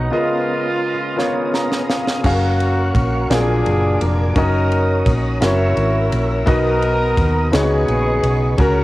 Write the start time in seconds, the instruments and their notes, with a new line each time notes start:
Already playing: grand piano B3 F#4 A#4 D#5, trumpet D#4, tonewheel organ A#5
0.10 grand piano C#3 B3 F4 A#4 D#5, horn section G#3 B3 F4, tonewheel organ B3 C#4 F5 D#6, trumpet F4
1.16 grand piano B3 F4 A#4 C#5, horn section G#4, snare
1.20 horn section B3 F4
1.54 grand piano A#5, snare
1.72 snare
1.89 grand piano F5, snare
2.07 snare
2.24 fingered electric bass F#1, horn section A#3 C#4 F#4, grand piano C#4 F#4 G#4 F5, tonewheel organ A#4 F5 C#6, kick, crash
2.32 grand piano A#4
2.60 ride
2.95 fingered electric bass A#1, kick, ride
3.30 fingered electric bass A#1, grand piano A#2 F#3 D4 G#4 A#4 F5, horn section D4 F4 G#4, tonewheel organ G#5 D6, snare, ride
3.66 fingered electric bass F#1, ride
4.01 fingered electric bass F1, horn section A#4, ride
4.36 fingered electric bass F#1, grand piano C#4 D#4 F#4 A#4 D#5, horn section C#4 D#4 A#4, tonewheel organ C#5 A#5 D#6, kick, ride
4.72 ride
5.06 fingered electric bass A#1, kick, ride
5.41 fingered electric bass F#1, grand piano C#4 E4 F#4 A#4 E5, horn section C#5, tonewheel organ E6, snare, ride
5.45 horn section E4 A#4
5.77 fingered electric bass G#1, ride
6.12 fingered electric bass A#1, ride
6.46 fingered electric bass B1, grand piano B2 B3 D#4 F#4 A#4 D#5, tonewheel organ B3 D#6, horn section D#4 F#4 A#4, kick, ride
6.82 ride
7.17 fingered electric bass D#2, kick, ride
7.52 fingered electric bass C#2, grand piano C#3 B3 D#4 F4 G#4 C#5, horn section G#4, tonewheel organ B4 D#5 C#6, snare, ride
7.56 horn section B3 D#4, grand piano F#4
7.88 fingered electric bass A#1, ride
8.23 fingered electric bass B1, ride
8.58 fingered electric bass C#2, grand piano C#3 C#4 F#4 A#4, horn section C#4 F#4 A#4, tonewheel organ F#4 C#5, kick, ride